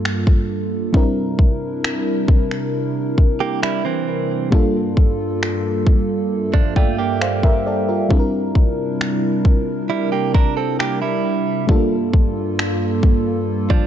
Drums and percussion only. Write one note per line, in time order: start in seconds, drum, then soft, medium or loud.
0.05 finger snap loud
0.27 kick medium
0.94 kick loud
1.39 kick medium
1.84 finger snap loud
2.28 kick medium
2.51 finger snap medium
3.18 kick medium
3.63 finger snap loud
4.52 kick loud
4.97 kick medium
5.43 finger snap loud
5.87 kick medium
6.54 kick medium
6.76 kick medium
7.22 finger snap loud
7.43 kick medium
8.11 kick loud
8.55 kick medium
9.01 finger snap loud
9.45 kick medium
10.35 kick medium
10.80 finger snap loud
11.69 kick medium
12.13 kick medium
12.59 finger snap loud
13.03 kick medium
13.70 kick medium